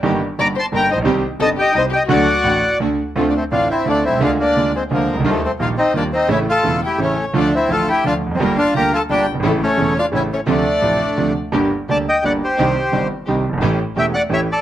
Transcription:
<<
  \new Staff \with { instrumentName = "Violin" } { \time 3/4 \key d \phrygian \tempo 4 = 173 r4 d''8 c''8 bes'8 ees'8 | r4 a'8 g'8 ees'8 g'8 | fis'2 r4 | \key d \minor a'16. d''32 c''8 f''8 e''8 d''8 e''8 |
f''8 d''4 c''8 bes'8. r16 | a'8 c''8 f''8 ees''8 d''8 ees''8 | e''8 a''4 g''8 cis''8. r16 | d''8 e''8 a''8 g''8 f''8 r16. c''32 |
bes'8 f''8 bes''8 a''8 g''8 r8 | a'8 cis''4 f''8 e''8 cis''8 | d''2~ d''8 r8 | \key c \dorian r2. |
r2. | r2. | }
  \new Staff \with { instrumentName = "Bandoneon" } { \time 3/4 \key d \phrygian << { r4 d'''8 c'''8 bes''8 ees''8 | r4 a''8 g''8 ees''8 g''8 | fis''2 r4 | \key d \minor a16. d'32 c'8 f'8 e'8 d'8 e'8 |
f'8 d'4 c'8 bes8. r16 | a8 c'8 f'8 ees'8 d'8 ees'8 | e'8 a'4 g'8 cis'8. r16 | d'8 e'8 a'8 g'8 f'8 r16. c'32 |
bes8 f'8 bes'8 a'8 g'8 r8 | a8 cis'4 f'8 e'8 cis'8 | d'2~ d'8 r8 | \key c \dorian r4 a''8 g''8 fis''8 c''8~ |
c''4. r4. | r4 g''8 fis''8 e''8 d''8 | } \\ { r4 bes''8 a''8 g''8 c''8 | r4 ees''8 ees''8 c''8 ees''8 | d''2 r4 | f8 a8 d'8 c'8 a8 c'8 |
d'8 bes4 aes8 f8. r16 | f8 a8 bes8 c'8 bes8 c'8 | cis'8 f'4 e'8 a8. r16 | a8 c'8 f'8 e'8 d'8 r8 |
g8 d'8 g'8 f'8 d'8 r8 | e8 a4 d'8 cis'8 a8 | a2~ a8 r8 | r4 d''8 ees''8 d''8 g'8~ |
g'4. r4. | r4 e''8 d''8 cis''8 a'8 | } >> }
  \new Staff \with { instrumentName = "String section" } { \time 3/4 \key d \phrygian <g, bes ees' g'>8 r8 <g, bes ees' g'>8 r8 <g, bes ees' g'>8 r8 | <c' ees' g'>8 r8 <c' ees' g'>8 r8 <c' ees' g'>8 r8 | <a d' fis'>8 r8 <a d' fis'>8 r8 <a d' fis'>8 r8 | \key d \minor <c' d' f'>8 r8 <c' d' f'>8 r8 <c' d' f'>8 r8 |
<d bes d' aes'>8 r8 <d bes d' aes'>8 r8 <d bes d' aes'>8 r8 | <g ees' f'>8 r8 <g ees' f'>8 r8 <g ees' f'>8 r8 | <a cis' e'>8 r8 <a cis' e'>8 r8 <a cis' e'>8 r8 | <a d' f'>8 r8 <a d' f'>8 r8 <a d' f'>8 r8 |
<g bes f'>8 r8 <g bes f'>8 r8 <g bes f'>8 r8 | <a cis' e'>8 r8 <a cis' e'>8 r8 <a cis' e'>8 r8 | <c' d' f'>8 r8 <c' d' f'>8 r8 <c' d' f'>8 r8 | \key c \dorian <bes d' g'>8 r8 <bes d' g'>8 r8 <bes d' g'>8 r8 |
<c' ees' g'>8 r8 <c' ees' g'>8 r8 <c' ees' g'>8 r8 | <a cis' g'>8 r8 <a cis' g'>8 r8 <a cis' g'>8 r8 | }
  \new Staff \with { instrumentName = "Grand piano" } { \clef bass \time 3/4 \key d \phrygian <g,, g, ees g bes g'>8 r8 <g,, g,>8 r8 <g,, g,>8 r32 a,,32 bes,,32 b,,32 | <c, c ees g c' g'>8 r8 <g,, g,>8 r8 <c, c>8 r8 | <d, d fis a fis'>8 r8 <a,, a,>8 r8 <d, d>8 r8 | \key d \minor <d, d a c' f'>8 r8 <a,, a, d a c' f'>8 r8 <d, d a c' f'>8 r32 b,,32 c,32 cis,32 |
<d, d aes bes f'>8 r8 <d, d aes bes f'>8 r8 <d, d aes bes f'>8 r32 c,32 cis,32 d,32 | <ees, ees g bes f'>8 r8 <bes,, bes, ees g bes f'>8 r8 <ees, ees g bes f'>8 r8 | <a,, a, cis e a e'>8 r8 <e,, e, cis e a e'>8 r8 <a,, a, cis e a e'>8 r8 | <d, d f a f'>8 r8 <a,, a, d f a f'>8 r8 <d, d f a f'>8 r32 e,32 f,32 fis,32 |
<g,, g, d g bes f'>8 r8 <d, d g bes f'>8 r8 <g,, g, d g bes f'>8 r32 fis,,32 g,,32 gis,,32 | <a,, a, cis e a e'>8 r8 <e,, e, cis e a e'>8 r8 <a,, a, cis e a e'>8 r8 | <d, c d f a d'>8 r8 <a,, a, c f a d'>8 r8 <d, c d f a d'>8 r8 | \key c \dorian <g,, g, d g bes g'>8 r8 <d, d g bes g'>8 r8 <g,, g, d g bes g'>8 r8 |
<c, c ees g c' g'>8 r8 <g,, g, ees g c' g'>8 r8 <c, c ees g c' g'>8 r32 fis,,32 g,,32 aes,,32 | <a,, a, e a cis' g'>8 r8 <e,, e, e a cis' g'>8 r8 <a,, a, e a cis' g'>8 r8 | }
>>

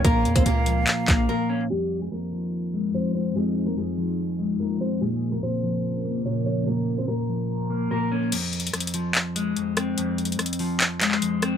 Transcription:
<<
  \new Staff \with { instrumentName = "Flute" } { \time 4/4 \key f \minor \tempo 4 = 145 f''1 | r1 | r1 | r1 |
r1 | r1 | r1 | }
  \new Staff \with { instrumentName = "Nylon-string guitar" } { \time 4/4 \key f \minor <bes bes'>8. <c' c''>16 <bes bes'>2 <bes bes'>8 r8 | <g g'>8. <aes aes'>16 <bes bes'>2 <c' c''>8 <c' c''>8 | <aes aes'>8. <bes bes'>16 <aes aes'>2 <bes bes'>8 <c' c''>8 | <aes aes'>8. <bes bes'>16 <c' c''>2 <des' des''>8 <des' des''>8 |
<bes bes'>8. <c' c''>16 <bes bes'>2 <bes bes'>8 r8 | r1 | r1 | }
  \new Staff \with { instrumentName = "Analog synth pad" } { \time 4/4 \key f \minor <bes bes' f''>1 | <f, f ees' f'>1~ | <f, f ees' f'>1 | <bes, des f bes'>1~ |
<bes, des f bes'>1 | r1 | r1 | }
  \new Staff \with { instrumentName = "Clean electric guitar" } { \clef bass \time 4/4 \key f \minor <bes, bes des'>4 bes,8 f4 bes8 bes,8 des'8 | f,4 f,8 f4 aes8 f,8 c'8 | f,4 f,8 f4 aes8 f,8 c'8 | bes,4 bes,8 f4 bes8 bes,8 des'8 |
bes,4 bes,8 f4 bes8 bes,8 des'8 | f,4 f,8 f4 aes8 f,8 c'8 | f,4 f,8 f4 aes8 f,8 c'8 | }
  \new Staff \with { instrumentName = "808-style bass" } { \clef bass \time 4/4 \key f \minor bes,,8 f,16 bes,,16 des,4 r8 bes,,8 r4 | r1 | r1 | r1 |
r1 | r1 | r1 | }
  \new DrumStaff \with { instrumentName = "Drums" } \drummode { \time 4/4 <hh bd>8 hh16 <hh bd>16 hh8 hh8 <hc hh>8 <hc hh bd>8 r4 | r4 r4 r4 r4 | r4 r4 r4 r4 | r4 r4 r4 r4 |
r4 r4 r4 r4 | \tuplet 3/2 { <cymc hh>16 r16 r16 hh16 hh16 hh16 <hh ss>16 hh16 hh16 hh16 r16 r16 } <hc hh>8 hh8 hh8 <hh ss>8 | \tuplet 3/2 { hh16 r16 r16 hh16 hh16 hh16 <hh ss>16 hh16 hh16 hho16 r16 r16 } <hc hh>8 <hc hh>16 hc16 hh8 <hh ss>8 | }
>>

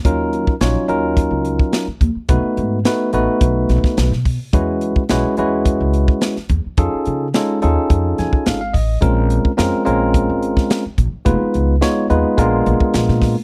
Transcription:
<<
  \new Staff \with { instrumentName = "Tine electric piano" } { \time 4/4 \key f \phrygian \tempo 4 = 107 << { r1 | r1 | r1 | r2 r8 gis''8 f''16 f''16 ees''8 |
r1 | r1 | } \\ { <ges des' ees' f' bes'>4 <ges des' ees' f' des''>8 <ges des' ees' f' bes'>4. r4 | <a b dis' fis' b'>4 <a b dis' fis' b'>8 <a b dis' fis' b'>4. r4 | <gis cis' e' fis' b'>4 <gis cis' e' fis' b'>8 <gis cis' e' fis' b'>4. r4 | <cis' ees' f' gis' a'>4 <gis cis' ees' f' a'>8 <cis' ees' f' gis' a'>4. r4 |
<aes c' des' f' bes'>4 <aes c' des' f' bes'>8 <aes c' des' f' bes'>4. r4 | <aes ces' ees' f' ces''>4 <aes ces' ees' f' des''>8 <aes ces' ees' f' ces''>8 <aes ces' d' f' bes'>4. r8 | } >> }
  \new Staff \with { instrumentName = "Upright bass" } { \clef bass \time 4/4 \key f \phrygian ees,8. r16 bes,,16 r16 ees,8. des,8 r8. ees,16 r16 | b,,16 r16 aes,8 r8 a,,16 r16 b,,8 b,,16 r16 b,,16 b,8 r16 | e,8. r16 b,,16 r16 e,8. cis,8 r8. e,16 r16 | f,16 r16 cis8 r8 ees,16 r16 f,8 f,16 r16 gis,,8 a,,8 |
bes,,8. r16 f,16 r16 bes,,8. aes,,8 r8. bes,,16 r16 | f,,16 r16 des,8 r8 ees,16 r16 bes,,8 bes,,16 r16 bes,,16 bes,8 r16 | }
  \new DrumStaff \with { instrumentName = "Drums" } \drummode { \time 4/4 <hh bd>8 hh16 bd16 <hh sn>8 hh8 <hh bd>8 hh16 bd16 <hh sn>8 <hh bd>8 | <hh bd>8 hh8 <hh sn>8 hh8 <hh bd>8 <hh sn>16 <bd sn>16 <hh sn>16 sn16 <hho bd>8 | <hh bd>8 hh16 bd16 <hh sn>8 hh8 <hh bd>8 hh16 bd16 <hh sn>16 sn16 <hh bd>8 | <hh bd>8 hh8 <hh sn>8 hh8 <hh bd>8 <hh sn>16 bd16 <hh sn>8 <hho bd>8 |
<hh bd>8 hh16 bd16 <hh sn>8 hh8 <hh bd>8 hh16 <bd sn>16 <hh sn>8 <hh bd>8 | <hh bd>8 hh8 <hh sn>8 hh8 <hh bd>8 hh16 bd16 <hh sn>16 sn16 <hho bd sn>8 | }
>>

